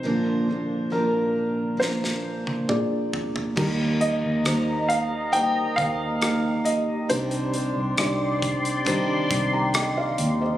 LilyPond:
<<
  \new Staff \with { instrumentName = "Analog synth pad" } { \time 4/4 \key ees \major \tempo 4 = 68 << { r1 | <ees'' bes''>1 | <d'' c'''>1 | } \\ { r1 | g'1~ | g'1 | } >> }
  \new Staff \with { instrumentName = "Grand piano" } { \time 4/4 \key ees \major c''4 bes'4 c''4 d''8. r16 | r8 ees''4 f''8 g''8 f''4 ees''8 | c''2 r2 | }
  \new Staff \with { instrumentName = "Felt piano" } { \time 4/4 \key ees \major <bes d' f' bes'>8 <bes d' f' bes'>8 <bes d' f' bes'>4 <bes d' f' bes'>4 <bes d' f' aes'>4 | <bes ees' g' bes'>4 <bes ees' g' c''>4 <bes ees' g' c''>8 <bes ees' g' c''>8 <bes ees' g' bes'>4 | <d' ees' g' c''>4 <d' ees' g' d''>4 <d' ees' g' c''>8 r16 <g'' bes''>16 <ees'' g''>16 <d'' f''>8 <c'' ees''>16 | }
  \new Staff \with { instrumentName = "Felt piano" } { \clef bass \time 4/4 \key ees \major <bes,, bes,>1 | ees4. r2 r8 | c4. r2 r8 | }
  \new Staff \with { instrumentName = "Steel-string acoustic guitar" } { \time 4/4 \key ees \major <bes, d f bes d' bes'>4 <f bes d' bes'>4 <f bes d' bes'>2 | <ees g bes ees' bes'>4 <g bes ees' bes'>4 <ees g bes ees' bes'>2 | <c ees g c' d' g'>8 <g c' d' g'>4. <c ees g c' d' g'>2 | }
  \new Staff \with { instrumentName = "Fingered electric bass" } { \clef bass \time 4/4 \key ees \major r1 | ees,8. ees,16 ees,4. ees,4. | c,8. c,16 c,4. c,4 ees,8 | }
  \new DrumStaff \with { instrumentName = "Drums" } \drummode { \time 4/4 r4 r4 sn16 sn8 tommh16 toml8 tomfh16 tomfh16 | <cymc bd>8 hh8 <hh ss>8 hh8 hh8 <hh bd>8 <hh ss>8 hh8 | hh16 hh16 hh8 <hh ss>8 <hh bd>16 hh16 <hh bd>8 <hh bd>8 <hh ss>8 hh8 | }
>>